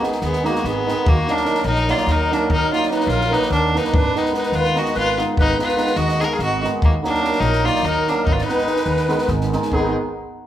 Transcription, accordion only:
0, 0, Header, 1, 2, 480
1, 0, Start_track
1, 0, Tempo, 411805
1, 1245, Time_signature, 7, 3, 24, 8
1, 12202, End_track
2, 0, Start_track
2, 0, Title_t, "Accordion"
2, 0, Program_c, 0, 21
2, 52, Note_on_c, 0, 68, 65
2, 242, Note_off_c, 0, 68, 0
2, 260, Note_on_c, 0, 68, 72
2, 516, Note_off_c, 0, 68, 0
2, 563, Note_on_c, 0, 66, 75
2, 762, Note_off_c, 0, 66, 0
2, 779, Note_on_c, 0, 68, 75
2, 1261, Note_off_c, 0, 68, 0
2, 1274, Note_on_c, 0, 66, 89
2, 1511, Note_off_c, 0, 66, 0
2, 1528, Note_on_c, 0, 70, 77
2, 1925, Note_off_c, 0, 70, 0
2, 1942, Note_on_c, 0, 70, 83
2, 2192, Note_off_c, 0, 70, 0
2, 2202, Note_on_c, 0, 74, 92
2, 2416, Note_off_c, 0, 74, 0
2, 2432, Note_on_c, 0, 70, 83
2, 2692, Note_off_c, 0, 70, 0
2, 2710, Note_on_c, 0, 70, 81
2, 2921, Note_off_c, 0, 70, 0
2, 2940, Note_on_c, 0, 70, 102
2, 3163, Note_off_c, 0, 70, 0
2, 3189, Note_on_c, 0, 74, 74
2, 3373, Note_off_c, 0, 74, 0
2, 3399, Note_on_c, 0, 71, 79
2, 3583, Note_off_c, 0, 71, 0
2, 3592, Note_on_c, 0, 70, 85
2, 3865, Note_on_c, 0, 71, 88
2, 3872, Note_off_c, 0, 70, 0
2, 4084, Note_on_c, 0, 70, 73
2, 4085, Note_off_c, 0, 71, 0
2, 4350, Note_off_c, 0, 70, 0
2, 4381, Note_on_c, 0, 71, 84
2, 4581, Note_off_c, 0, 71, 0
2, 4599, Note_on_c, 0, 71, 89
2, 4842, Note_off_c, 0, 71, 0
2, 4860, Note_on_c, 0, 71, 77
2, 5059, Note_off_c, 0, 71, 0
2, 5076, Note_on_c, 0, 71, 82
2, 5251, Note_off_c, 0, 71, 0
2, 5269, Note_on_c, 0, 71, 96
2, 5548, Note_on_c, 0, 75, 88
2, 5550, Note_off_c, 0, 71, 0
2, 5757, Note_on_c, 0, 71, 95
2, 5766, Note_off_c, 0, 75, 0
2, 6026, Note_off_c, 0, 71, 0
2, 6268, Note_on_c, 0, 71, 102
2, 6505, Note_off_c, 0, 71, 0
2, 6527, Note_on_c, 0, 71, 88
2, 6916, Note_off_c, 0, 71, 0
2, 6941, Note_on_c, 0, 75, 98
2, 7228, Note_off_c, 0, 75, 0
2, 7252, Note_on_c, 0, 77, 91
2, 7252, Note_on_c, 0, 78, 80
2, 7295, Note_off_c, 0, 77, 0
2, 7323, Note_off_c, 0, 78, 0
2, 7362, Note_on_c, 0, 77, 100
2, 7460, Note_off_c, 0, 77, 0
2, 7476, Note_on_c, 0, 75, 75
2, 7729, Note_off_c, 0, 75, 0
2, 7984, Note_on_c, 0, 66, 83
2, 8092, Note_off_c, 0, 66, 0
2, 8261, Note_on_c, 0, 70, 79
2, 8628, Note_off_c, 0, 70, 0
2, 8660, Note_on_c, 0, 70, 96
2, 8930, Note_off_c, 0, 70, 0
2, 8945, Note_on_c, 0, 74, 90
2, 9150, Note_off_c, 0, 74, 0
2, 9155, Note_on_c, 0, 70, 91
2, 9431, Note_off_c, 0, 70, 0
2, 9452, Note_on_c, 0, 70, 85
2, 9657, Note_off_c, 0, 70, 0
2, 9659, Note_on_c, 0, 71, 75
2, 9730, Note_off_c, 0, 71, 0
2, 9735, Note_on_c, 0, 74, 72
2, 9817, Note_off_c, 0, 74, 0
2, 9828, Note_on_c, 0, 71, 101
2, 10833, Note_off_c, 0, 71, 0
2, 11332, Note_on_c, 0, 63, 78
2, 11569, Note_off_c, 0, 63, 0
2, 12202, End_track
0, 0, End_of_file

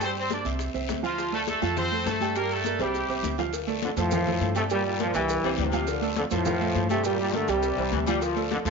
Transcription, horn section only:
0, 0, Header, 1, 2, 480
1, 0, Start_track
1, 0, Tempo, 293112
1, 18, Time_signature, 4, 2, 24, 8
1, 14247, End_track
2, 0, Start_track
2, 0, Title_t, "Horn section"
2, 0, Program_c, 0, 61
2, 59, Note_on_c, 0, 72, 94
2, 61, Note_on_c, 0, 60, 72
2, 158, Note_off_c, 0, 72, 0
2, 159, Note_off_c, 0, 60, 0
2, 296, Note_on_c, 0, 60, 69
2, 300, Note_on_c, 0, 72, 86
2, 502, Note_off_c, 0, 60, 0
2, 504, Note_off_c, 0, 72, 0
2, 528, Note_on_c, 0, 62, 62
2, 528, Note_on_c, 0, 74, 76
2, 737, Note_off_c, 0, 74, 0
2, 738, Note_off_c, 0, 62, 0
2, 1720, Note_on_c, 0, 65, 96
2, 1734, Note_on_c, 0, 53, 70
2, 2157, Note_off_c, 0, 65, 0
2, 2165, Note_off_c, 0, 53, 0
2, 2189, Note_on_c, 0, 69, 89
2, 2192, Note_on_c, 0, 57, 73
2, 2295, Note_off_c, 0, 69, 0
2, 2298, Note_off_c, 0, 57, 0
2, 2434, Note_on_c, 0, 69, 93
2, 2444, Note_on_c, 0, 57, 74
2, 2874, Note_off_c, 0, 69, 0
2, 2880, Note_off_c, 0, 57, 0
2, 2900, Note_on_c, 0, 72, 110
2, 2907, Note_on_c, 0, 60, 79
2, 3347, Note_off_c, 0, 72, 0
2, 3351, Note_off_c, 0, 60, 0
2, 3381, Note_on_c, 0, 69, 98
2, 3392, Note_on_c, 0, 57, 81
2, 3828, Note_off_c, 0, 69, 0
2, 3833, Note_off_c, 0, 57, 0
2, 3865, Note_on_c, 0, 70, 104
2, 3877, Note_on_c, 0, 58, 81
2, 4103, Note_off_c, 0, 70, 0
2, 4109, Note_off_c, 0, 58, 0
2, 4122, Note_on_c, 0, 69, 102
2, 4126, Note_on_c, 0, 57, 82
2, 4592, Note_off_c, 0, 69, 0
2, 4594, Note_off_c, 0, 57, 0
2, 4604, Note_on_c, 0, 67, 89
2, 4605, Note_on_c, 0, 55, 66
2, 5488, Note_off_c, 0, 55, 0
2, 5488, Note_off_c, 0, 67, 0
2, 14247, End_track
0, 0, End_of_file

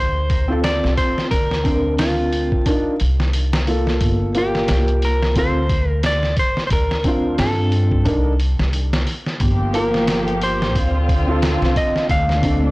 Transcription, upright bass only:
0, 0, Header, 1, 2, 480
1, 0, Start_track
1, 0, Key_signature, -2, "minor"
1, 0, Tempo, 674157
1, 933, Time_signature, 4, 2, 24, 8
1, 9050, End_track
2, 0, Start_track
2, 0, Title_t, "Upright bass"
2, 0, Program_c, 0, 32
2, 0, Note_on_c, 0, 38, 90
2, 567, Note_off_c, 0, 38, 0
2, 598, Note_on_c, 0, 36, 89
2, 684, Note_off_c, 0, 36, 0
2, 938, Note_on_c, 0, 38, 85
2, 1815, Note_off_c, 0, 38, 0
2, 2142, Note_on_c, 0, 36, 87
2, 2838, Note_off_c, 0, 36, 0
2, 2857, Note_on_c, 0, 31, 81
2, 3316, Note_off_c, 0, 31, 0
2, 3345, Note_on_c, 0, 36, 93
2, 3800, Note_off_c, 0, 36, 0
2, 3819, Note_on_c, 0, 38, 93
2, 4517, Note_off_c, 0, 38, 0
2, 4778, Note_on_c, 0, 38, 87
2, 5236, Note_off_c, 0, 38, 0
2, 5264, Note_on_c, 0, 43, 86
2, 5719, Note_off_c, 0, 43, 0
2, 5738, Note_on_c, 0, 36, 90
2, 6088, Note_off_c, 0, 36, 0
2, 6118, Note_on_c, 0, 36, 84
2, 6437, Note_off_c, 0, 36, 0
2, 6697, Note_on_c, 0, 31, 89
2, 7657, Note_off_c, 0, 31, 0
2, 7657, Note_on_c, 0, 38, 89
2, 8248, Note_off_c, 0, 38, 0
2, 8274, Note_on_c, 0, 36, 91
2, 8362, Note_off_c, 0, 36, 0
2, 8614, Note_on_c, 0, 38, 87
2, 9050, Note_off_c, 0, 38, 0
2, 9050, End_track
0, 0, End_of_file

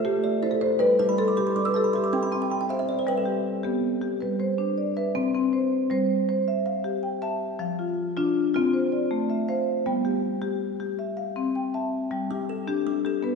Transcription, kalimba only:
0, 0, Header, 1, 2, 480
1, 0, Start_track
1, 0, Tempo, 376884
1, 1032, Time_signature, 12, 3, 24, 8
1, 17004, End_track
2, 0, Start_track
2, 0, Title_t, "Kalimba"
2, 0, Program_c, 0, 108
2, 0, Note_on_c, 0, 57, 85
2, 0, Note_on_c, 0, 69, 76
2, 300, Note_on_c, 0, 74, 62
2, 306, Note_off_c, 0, 57, 0
2, 542, Note_on_c, 0, 64, 76
2, 548, Note_off_c, 0, 69, 0
2, 1024, Note_on_c, 0, 71, 69
2, 1028, Note_off_c, 0, 64, 0
2, 1028, Note_off_c, 0, 74, 0
2, 1265, Note_on_c, 0, 81, 68
2, 1268, Note_on_c, 0, 55, 90
2, 1386, Note_on_c, 0, 83, 75
2, 1493, Note_off_c, 0, 81, 0
2, 1504, Note_on_c, 0, 84, 74
2, 1510, Note_off_c, 0, 71, 0
2, 1614, Note_off_c, 0, 83, 0
2, 1629, Note_on_c, 0, 86, 68
2, 1733, Note_off_c, 0, 84, 0
2, 1746, Note_on_c, 0, 83, 67
2, 1753, Note_off_c, 0, 55, 0
2, 1856, Note_off_c, 0, 86, 0
2, 1869, Note_on_c, 0, 84, 67
2, 1974, Note_off_c, 0, 83, 0
2, 1986, Note_on_c, 0, 55, 77
2, 1986, Note_on_c, 0, 86, 66
2, 2096, Note_off_c, 0, 84, 0
2, 2104, Note_on_c, 0, 88, 76
2, 2215, Note_off_c, 0, 86, 0
2, 2216, Note_on_c, 0, 81, 66
2, 2334, Note_off_c, 0, 88, 0
2, 2344, Note_on_c, 0, 83, 61
2, 2450, Note_off_c, 0, 81, 0
2, 2462, Note_on_c, 0, 84, 67
2, 2473, Note_off_c, 0, 55, 0
2, 2574, Note_off_c, 0, 83, 0
2, 2594, Note_on_c, 0, 86, 67
2, 2694, Note_off_c, 0, 84, 0
2, 2712, Note_on_c, 0, 60, 81
2, 2713, Note_on_c, 0, 84, 68
2, 2820, Note_off_c, 0, 86, 0
2, 2836, Note_on_c, 0, 83, 68
2, 2939, Note_off_c, 0, 84, 0
2, 2959, Note_on_c, 0, 81, 66
2, 3061, Note_off_c, 0, 83, 0
2, 3081, Note_on_c, 0, 79, 69
2, 3183, Note_off_c, 0, 81, 0
2, 3197, Note_off_c, 0, 60, 0
2, 3202, Note_on_c, 0, 83, 65
2, 3304, Note_off_c, 0, 79, 0
2, 3322, Note_on_c, 0, 79, 69
2, 3425, Note_off_c, 0, 83, 0
2, 3442, Note_on_c, 0, 67, 75
2, 3443, Note_on_c, 0, 77, 67
2, 3545, Note_off_c, 0, 79, 0
2, 3556, Note_on_c, 0, 76, 68
2, 3666, Note_off_c, 0, 77, 0
2, 3676, Note_on_c, 0, 74, 62
2, 3782, Note_off_c, 0, 76, 0
2, 3805, Note_on_c, 0, 72, 61
2, 3902, Note_off_c, 0, 74, 0
2, 3923, Note_off_c, 0, 67, 0
2, 3926, Note_on_c, 0, 71, 81
2, 4027, Note_off_c, 0, 72, 0
2, 4043, Note_on_c, 0, 69, 66
2, 4148, Note_off_c, 0, 71, 0
2, 4266, Note_off_c, 0, 69, 0
2, 15673, Note_on_c, 0, 55, 81
2, 15913, Note_on_c, 0, 69, 66
2, 16149, Note_off_c, 0, 55, 0
2, 16386, Note_on_c, 0, 55, 79
2, 16619, Note_off_c, 0, 69, 0
2, 16635, Note_on_c, 0, 69, 63
2, 16863, Note_off_c, 0, 55, 0
2, 17004, Note_off_c, 0, 69, 0
2, 17004, End_track
0, 0, End_of_file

